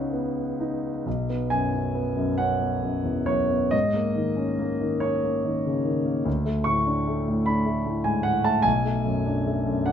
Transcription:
grand piano
Already playing: C#2 B3 C#4 D#4 F#4 F#5
0.13 B3
0.60 D#4
1.06 B1
1.30 B3
1.50 F#2 G#5
1.73 C#4
1.95 B3
2.16 F#2
2.38 C#4 F#5
2.60 B3
2.82 F#2
3.04 E2
3.26 F#2 C#5
3.50 B3
3.71 G#2 D#5
3.94 A#3
4.15 D#3
4.36 C#4
4.59 A#3
4.81 D#3
5.00 C#4 C#5
5.23 A#3
5.45 D#3
5.66 C#3
5.85 D#3
6.06 A#3
6.25 D2
6.45 A3
6.64 A2 C#6
6.86 D4
7.07 A3
7.28 A2
7.46 D4 B5
7.66 A3
7.86 A2
8.04 G#2 G#5
8.23 A2 F#5
8.44 A3 A5
8.62 B1 G#5
8.85 A3
9.05 F#2
9.26 D4
9.47 A3
9.66 F#2
9.86 D4 F#5

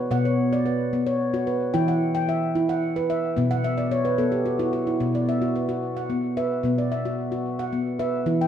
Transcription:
handpan
Already playing: B4
0.11 B2 B3 F#5
0.25 C#5
0.53 D5
0.66 B4
0.93 B3
1.07 C#5
1.34 F#4
1.47 B4
1.74 E3 E4 G5
1.88 F#5
2.15 G5
2.29 E5
2.55 E4
2.69 F#5
2.96 B4
3.10 E5
3.37 B2 B3
3.51 F#5
3.64 E5
3.78 D5
3.91 C#5
4.05 B4
4.18 B3 A4
4.32 G4
4.46 F#4
4.59 E4 F#4
4.73 F#4
4.87 E4
5.00 B2 B3
5.15 D5
5.29 E5
5.42 F#4
5.56 B4
5.69 F#4
5.97 F#5
6.10 B3
6.37 B4 E5
6.63 B2 B3
6.78 D5
6.92 E5
7.05 F#4
7.32 F#4
7.59 F#5
7.73 B3
7.99 B4 E5
8.26 E3 E4
8.41 G5

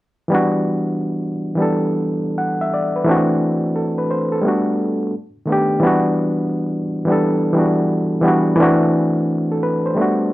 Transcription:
reed electric piano
0.28 E3 G3 B3
0.33 D4 F#4
1.55 E3 G3 B3
1.60 D4 A4
2.38 F#5
2.61 E5
2.74 D5
2.96 B4
3.04 E3 A3 C4
3.09 D4 F#4
3.76 A4
3.98 B4
4.11 C5
4.33 A4
4.42 G3 A3 B3
4.47 D4 F#4
5.45 D#3 A3 B3
5.50 D4 G4
5.80 E3 G3 B3
5.85 D4 F#4
7.05 E3 G3 B3
7.10 D4 A4
7.53 E3 G3 B3
7.58 D4 F#4
8.21 E3 G3 B3
8.26 D4 F#4
8.56 E3 A3 C4
8.60 D4 F#4
9.52 A4
9.63 B4
9.86 C5
9.95 G3 A3 B3
10.00 D4 F#4

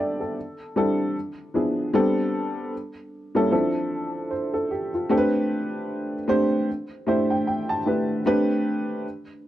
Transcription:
upright piano
Already playing: G3 B3 C4 D4 F4 A4 D5 E5 G5
0.20 A4
0.76 G3 C4 D4 E4 A4
1.54 F3 B3 D4 E4 G#4
1.94 G3 B3 C4 D4 A4
3.35 G3 A#3 C#4 E4 A4
3.51 F3 C4 D4 E4 A4
4.31 C5
4.54 A4
4.71 G4
4.94 F4
5.09 A3 C4 D4 G4 A4
5.17 B4
6.28 A3 C4 D4 G4 C5
7.07 A3 D4 E4 G4 C5 E5
7.30 G5
7.47 G5
7.69 A5
7.86 A3 D4 E4 G4 B4
8.26 A3 C4 D4 G4 B4

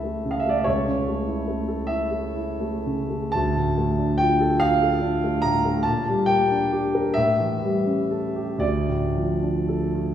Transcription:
grand piano
Already playing: C#2 C#3 A3 E4 A4 E5 A5
0.04 A3
0.25 C#3
0.31 F5
0.40 E5
0.46 A3 D5
0.58 E5
0.64 C#2 C#5
0.88 C#3
1.08 A3
1.27 E4
1.48 A3
1.68 A4
1.87 E4 E5
2.11 A4
2.36 E4
2.60 A3
2.86 C#3
3.09 A3
3.32 D2 A5
3.56 A2
3.77 A3
3.98 D4
4.18 F4 G5
4.41 A4
4.60 F4 F5
4.82 A4
5.01 D4
5.24 A3
5.42 A2 A#5
5.65 A3
5.83 A#2 A5
6.06 G3
6.26 A#3 G5
6.51 D4
6.72 G4
6.95 A#4
7.14 A2 E5
7.40 E3
7.62 G3
7.86 C#4
8.11 A4
8.36 G4
8.58 D2 D5
8.88 A2
9.16 F3
9.42 D4
9.69 A4
9.95 F4

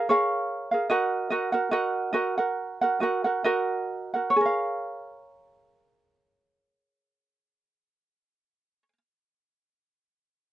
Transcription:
ukulele
0.09 G#4 A#4 C#5 F5
0.71 G#4 A#4 F5
0.90 F#4 A#4 D#5 F#5
1.30 F#4 A#4 D#5 F#5
1.52 F#4 A#4 F#5
1.71 F#4 A#4 D#5 F#5
2.13 F#4 A#4 D#5 F#5
2.38 F#4 A#4 F#5
2.81 F#4 A#4 F#5
3.00 F#4 A#4 D#5 F#5
3.24 F#4 A#4 F#5
3.44 F#4 A#4 D#5 F#5
4.14 F#4 A#4 F#5
4.30 C#5
4.36 G#4
4.41 A#4
4.46 F5

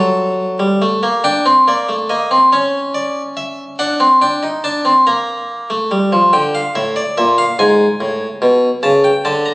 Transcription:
harpsichord
Already playing: F#3 A4
0.59 G3
0.82 A3
1.03 A#3
1.24 D4 G5
1.46 C4
1.68 A#3 D5
1.89 A3
2.10 A#3 D#5
2.31 C4
2.52 C#4 C#5
2.94 D5
3.37 E5
3.79 D4 F#5
4.00 C4
4.22 D4 G5
4.43 D#4
4.64 D4 A5
4.85 C4
5.07 A#3 A#5
5.70 A3
5.91 G3
6.12 F3
6.33 D3 G5
6.55 F5
6.75 A2 E5
6.96 D5
7.18 A#2 E5
7.38 F5
7.59 G#2 G#5
8.01 A2
8.42 B2
8.83 C#3 A5
9.04 G5
9.25 D3 A5
9.46 A#5

